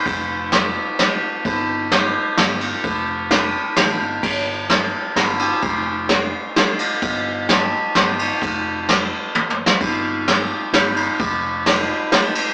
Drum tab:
CC |------------------|------------------|------------------|x-----------------|
RD |x-----x-----x-----|x-----x-----x--x--|x-----x-----x-----|------x-----x--x--|
SD |------o-----o-----|------o-----o-----|------o-----o-----|------o-----o-----|
T1 |------------------|------------------|------------------|------------------|
T2 |------------------|------------------|------------------|------------------|
BD |o-----------------|o-----------------|o-----------------|o-----------------|

CC |------------------|------------------|------------------|------------------|
RD |x-----x-----x--x--|x-----x-----x--x--|x-----x-----------|x-----x-----x--x--|
SD |------o-----o-----|------o-----o-----|------o---------o-|------o-----o-----|
T1 |------------------|------------------|------------o-----|------------------|
T2 |------------------|------------------|--------------o---|------------------|
BD |o-----------------|o-----------------|o-----------------|o-----------------|

CC |------------------|
RD |x-----x-----x--x--|
SD |------o-----o-----|
T1 |------------------|
T2 |------------------|
BD |o-----------------|